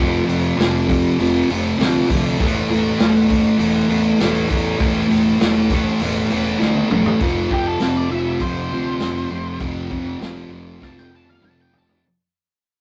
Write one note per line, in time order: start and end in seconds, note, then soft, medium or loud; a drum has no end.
0.00 0.20 F1 loud
0.00 0.24 F2 loud
0.00 0.25 C3 loud
0.00 0.26 F3 loud
0.00 0.74 C4 medium
0.26 0.50 F1 medium
0.26 0.55 F2 loud
0.26 0.56 C3 medium
0.26 0.56 F3 medium
0.26 open hi-hat medium
0.57 1.03 F1 loud
0.57 0.85 F2 loud
0.57 0.86 C3 loud
0.57 0.87 F3 loud
0.57 snare loud
0.57 open hi-hat medium
0.87 1.17 F2 medium
0.87 1.18 C3 medium
0.87 1.19 F3 loud
0.87 kick medium
0.87 open hi-hat medium
1.18 1.41 F1 medium
1.18 1.48 F2 loud
1.18 1.49 C3 loud
1.18 1.50 F3 loud
1.18 open hi-hat medium
1.48 1.71 F1 loud
1.48 1.77 F2 medium
1.48 1.78 C3 loud
1.48 1.79 F3 loud
1.48 open hi-hat medium
1.78 2.01 D2 loud
1.78 2.07 F2 loud
1.78 2.08 C3 loud
1.78 2.09 F3 loud
1.78 snare loud
1.78 open hi-hat loud
2.08 2.41 D2 medium
2.08 2.37 F2 medium
2.08 2.37 C3 medium
2.08 2.38 F3 medium
2.08 kick medium
2.08 open hi-hat medium
2.39 2.62 E1 loud
2.39 2.68 A2 loud
2.39 2.70 E3 loud
2.39 2.71 A3 loud
2.39 kick loud
2.39 open hi-hat medium
2.67 2.90 E1 medium
2.67 2.98 A2 medium
2.67 2.99 E3 loud
2.67 open hi-hat medium
2.71 3.00 A3 loud
2.99 3.44 E1 loud
2.99 3.26 A2 loud
2.99 3.28 E3 loud
2.99 3.28 A3 loud
2.99 snare loud
2.99 open hi-hat medium
3.27 3.56 A2 medium
3.27 3.56 E3 loud
3.27 3.58 A3 loud
3.27 kick medium
3.27 open hi-hat medium
3.58 3.81 E1 loud
3.58 3.87 A2 medium
3.58 3.88 E3 loud
3.58 3.90 A3 loud
3.58 open hi-hat medium
3.88 4.11 E2 loud
3.88 4.17 A2 medium
3.88 4.18 E3 medium
3.88 4.20 A3 medium
3.88 open hi-hat medium
4.19 4.42 E1 medium
4.19 4.47 A2 medium
4.19 4.47 E3 loud
4.19 4.49 A3 loud
4.19 snare loud
4.19 open hi-hat medium
4.48 4.73 E2 medium
4.48 4.77 A2 medium
4.48 4.78 E3 medium
4.48 4.79 A3 medium
4.48 kick medium
4.48 open hi-hat medium
4.78 5.02 E1 loud
4.78 5.07 A2 loud
4.78 5.08 E3 loud
4.78 5.09 A3 loud
4.78 kick loud
4.78 open hi-hat medium
5.08 5.33 E1 medium
5.08 5.38 A2 medium
5.08 5.39 E3 medium
5.08 5.39 A3 loud
5.08 open hi-hat medium
5.39 5.85 E1 loud
5.39 5.70 A2 loud
5.39 5.70 E3 loud
5.39 5.71 A3 loud
5.39 snare loud
5.39 open hi-hat medium
5.70 6.00 A2 medium
5.70 6.01 E3 loud
5.70 6.01 A3 loud
5.70 kick medium
5.70 open hi-hat medium
6.00 6.22 E1 loud
6.00 6.29 A2 medium
6.00 6.29 E3 loud
6.00 6.31 A3 loud
6.00 open hi-hat loud
6.30 6.53 E1 medium
6.30 6.58 A2 medium
6.30 6.58 E3 medium
6.30 6.59 A3 medium
6.30 open hi-hat medium
6.59 6.83 D2 medium
6.59 6.88 A2 medium
6.59 6.89 E3 loud
6.59 6.90 A3 loud
6.59 snare medium
6.75 high tom medium
6.89 7.13 E1 medium
6.89 7.18 A2 medium
6.89 7.18 E3 medium
6.89 7.18 A3 medium
6.89 mid tom medium
7.06 floor tom medium
7.20 7.49 F1 medium
7.20 7.49 F2 medium
7.20 7.49 C3 loud
7.20 7.51 F3 loud
7.20 kick loud
7.20 open hi-hat medium
7.49 7.79 F1 medium
7.49 7.79 F2 medium
7.49 7.80 C3 medium
7.49 7.80 F3 medium
7.49 7.66 G4 medium
7.49 kick medium
7.67 7.95 A4 medium
7.79 8.37 F1 medium
7.79 8.09 F2 medium
7.79 8.09 C3 medium
7.79 8.11 F3 medium
7.79 snare loud
7.79 open hi-hat medium
7.97 8.11 D5 medium
8.10 8.41 F2 medium
8.10 8.41 C3 medium
8.10 8.43 F3 medium
8.10 8.40 E5 medium
8.40 8.69 F1 medium
8.40 8.70 F2 medium
8.40 8.71 C3 loud
8.40 8.72 F3 medium
8.40 9.58 C5 medium
8.40 kick medium
8.40 open hi-hat medium
8.70 8.99 D2 medium
8.70 9.00 F2 medium
8.70 9.00 C3 medium
8.70 9.01 F3 medium
8.99 9.29 F1 medium
8.99 9.31 F2 medium
8.99 9.30 C3 medium
8.99 9.32 F3 medium
8.99 snare loud
8.99 open hi-hat medium
9.30 9.59 F1 medium
9.30 9.59 F2 medium
9.30 9.60 C3 medium
9.30 9.61 F3 medium
9.60 10.18 F1 loud
9.60 9.89 F2 medium
9.60 9.90 C3 loud
9.60 9.90 F3 loud
9.60 kick loud
9.60 open hi-hat medium
9.90 10.19 F2 medium
9.90 10.20 C3 medium
9.90 10.20 F3 loud
9.90 kick medium
10.19 10.47 F1 medium
10.19 10.50 F2 medium
10.19 10.50 C3 medium
10.19 10.52 F3 medium
10.19 snare loud
10.19 open hi-hat medium
10.48 10.79 F1 medium
10.48 10.79 F2 medium
10.48 10.80 C3 medium
10.53 10.81 F3 medium
10.80 11.40 F1 medium
10.80 11.10 F2 medium
10.80 11.11 C3 medium
10.80 11.12 F3 medium
10.80 10.99 A5 medium
10.80 kick medium
10.80 snare medium
10.97 11.15 G5 medium
10.97 snare medium
11.11 11.39 F2 medium
11.11 11.40 C3 medium
11.11 11.41 F3 medium
11.15 11.29 A5 medium
11.27 11.43 F5 medium
11.27 high tom medium
11.41 12.00 F1 medium
11.41 11.70 F2 medium
11.41 11.72 C3 medium
11.41 11.72 F3 medium
11.41 mid tom medium
11.45 11.59 A5 loud
11.61 11.78 G5 medium
11.71 12.01 F2 medium
11.71 12.02 C3 medium
11.71 12.02 F3 medium
11.71 floor tom medium
11.78 12.05 A5 medium
11.89 floor tom medium